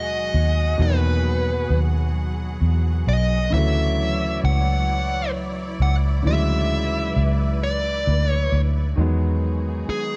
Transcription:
Already playing: D#2 B2 D#3 F#3 G#3 F#4 G#4 D#5 F#5
0.34 D#2
0.78 E2 B2 D#3 F#3
0.82 A#3 B4
0.89 B3
1.70 D#2
2.62 E2
3.07 B1 D#5
3.50 D2 C#3 E3 F#3 E4 C#5 D5 E5
3.56 A3
4.44 C#2 F#5
5.80 C#2 F#5
6.23 D2 C#3 E3 F#3 B4
6.27 G#3 E5
7.16 C#2
7.63 D5
8.07 D2
8.28 C#5
8.52 D2
8.96 E2 D#3 F#3 G#3 D#4 F#4 G#4
9.01 B3
9.89 G#4, muted fingered electric bass stroke

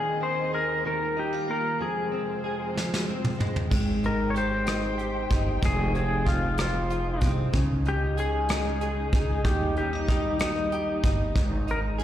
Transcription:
Already playing: D#2 D#3 C4 G#4 D#5
0.21 C4 C5
0.54 G#4 A#4
0.84 D#3 G3 F4 A#4
1.17 D#4 G4
1.33 F4
1.48 A#3 A#4
1.79 F2 C3 G#3 G#4 C5
2.12 C4
2.44 G#4
2.76 F3, snare
2.94 snare
3.08 C4
3.24 mid tom
3.39 G#3, mid tom
3.56 floor tom
3.71 G#1 G#3 C4 G5, kick, crash
4.03 D#4 A#4, closed hi-hat
4.30 C#5
4.35 G4 C5, closed hi-hat
4.66 D#4, cross-stick, closed hi-hat
4.98 G4, closed hi-hat
5.30 G1 D#4, kick, closed hi-hat
5.62 F1 F2 F3 C4 D#4 G#4, kick, closed hi-hat
5.94 C4 G#4, closed hi-hat
6.26 F4, kick, closed hi-hat
6.58 C4 F4, cross-stick, closed hi-hat
6.90 F4, closed hi-hat
7.21 C2 C4, kick, closed hi-hat
7.53 C#2 C#3 G#3 C#4 D#4, kick, closed hi-hat
7.85 D#4 G4, closed hi-hat
8.17 G#4, closed hi-hat
8.49 D#4, cross-stick, closed hi-hat
8.81 G#4, closed hi-hat
9.13 C#2 D#4, kick, closed hi-hat
9.45 D#2 D#3 G3 A#3 G4, kick, closed hi-hat
9.76 C#4 G4, closed hi-hat
9.93 D#4
10.08 D#4 G4, kick, closed hi-hat
10.39 D#4, cross-stick, closed hi-hat
10.72 G4, closed hi-hat
11.03 G1 D#4, kick, closed hi-hat
11.36 G#1 G#2 G#3 C4, kick, closed hi-hat
11.68 D#4 A#4, closed hi-hat
11.98 G#4, closed hi-hat

